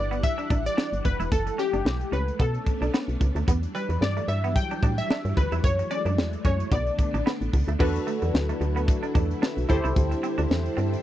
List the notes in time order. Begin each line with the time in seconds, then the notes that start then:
Already playing: G1 E3 G3 D4 D5 F#5
0.11 B3, closed hi-hat
0.23 E5, muted clean electric guitar stroke, kick, closed hi-hat
0.38 D4, closed hi-hat
0.50 A1 D4, kick, closed hi-hat
0.66 D5, closed hi-hat
0.77 D4, snare
0.93 G1, closed hi-hat
1.05 F#1 B4, muted clean electric guitar stroke, kick, closed hi-hat
1.20 E1 E4, closed hi-hat
1.31 F#1 G#3 A3 A4, kick, closed hi-hat
1.47 muted clean electric guitar stroke, closed hi-hat
1.58 C#4 G4, closed hi-hat
1.73 F#1 D4, closed hi-hat
1.85 B1, snare
2.01 closed hi-hat
2.12 C#2 C#4 B4, closed hi-hat
2.28 closed hi-hat
2.39 B2 A3 B3 C#4 D4 A4, kick, closed hi-hat
2.54 closed hi-hat
2.66 muted clean electric guitar stroke, kick, closed hi-hat
2.81 B1 D4, closed hi-hat
2.94 B3, snare
3.08 B1, closed hi-hat
3.21 C#2, muted clean electric guitar stroke, kick, closed hi-hat
3.35 D2 A3, closed hi-hat
3.47 E2 E3 F#3 G3 B3 D4, kick, closed hi-hat
3.63 closed hi-hat
3.75 G3 B4, closed hi-hat
3.89 E2, muted clean electric guitar stroke, closed hi-hat
4.01 G2 D5, snare
4.17 A3, closed hi-hat
4.28 G2 E5, muted clean electric guitar stroke, closed hi-hat
4.44 B3, closed hi-hat
4.56 G5, muted clean electric guitar stroke, kick, closed hi-hat
4.71 D4, closed hi-hat
4.83 A2 D4, kick, closed hi-hat
4.98 E5, closed hi-hat
5.10 D4, snare
5.25 G2, closed hi-hat
5.37 D2 B4, muted clean electric guitar stroke, kick, closed hi-hat
5.52 E2 E4, closed hi-hat
5.63 F#2 G#3 A3 C#5, kick, closed hi-hat
5.79 muted clean electric guitar stroke, closed hi-hat
5.91 C#4 D5, closed hi-hat
6.05 F#2 D4, closed hi-hat
6.17 E2, snare
6.33 closed hi-hat
6.45 F#2 C#4 C#5, kick, closed hi-hat
6.60 closed hi-hat
6.71 B1 D3 B3 D4 D5, kick, closed hi-hat
6.87 closed hi-hat
6.99 muted clean electric guitar stroke, kick, closed hi-hat
7.14 A1 D4, closed hi-hat
7.26 B3, snare
7.41 A1, closed hi-hat
7.53 C#2, muted clean electric guitar stroke, kick, open hi-hat
7.68 D2 A3, closed hi-hat
7.79 E2 D3 F#3 A3 B3 D4 E4 F#4 A4 B4, kick, crash
7.96 closed hi-hat
8.07 A3, closed hi-hat
8.22 E2, muted clean electric guitar stroke, closed hi-hat
8.34 D2, snare
8.49 A3, closed hi-hat
8.61 D2, muted clean electric guitar stroke, closed hi-hat
8.76 B3, closed hi-hat
8.88 muted clean electric guitar stroke, kick, closed hi-hat
9.03 D4, closed hi-hat
9.15 E2 D4, kick, closed hi-hat
9.31 closed hi-hat
9.42 D4, snare
9.57 B1, closed hi-hat
9.69 D2 G3 C4 E4 G4 A4 C5, muted clean electric guitar stroke, kick, closed hi-hat
9.84 C2 E4, closed hi-hat
9.96 D2, kick, closed hi-hat
10.11 muted clean electric guitar stroke, closed hi-hat
10.23 C4, closed hi-hat
10.38 D2 D4, closed hi-hat
10.50 E2, snare
10.66 closed hi-hat
10.77 G2 C4, closed hi-hat
10.94 closed hi-hat